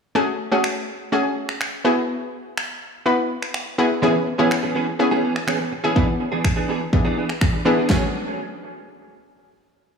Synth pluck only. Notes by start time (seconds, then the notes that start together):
0.15 A3 C#4 F#4 G#4
0.52 A3 C#4 F#4 G#4
1.12 A3 C#4 F#4 G#4
1.84 B3 E4 F#4 G#4
3.06 B3 E4 F#4 B4
3.78 B3 E4 F#4 G#4
4.02 B3 C#4 E4 G#4
4.39 B3 C#4 E4 G#4
4.99 B3 C#4 E4 G#4
5.84 E4 G#4
5.96 B3 D4 E4 G#4
6.93 B3 D4 E4 G#4
7.65 B3 D4 E4 G#4
7.90 A3 C#4 F#4 G#4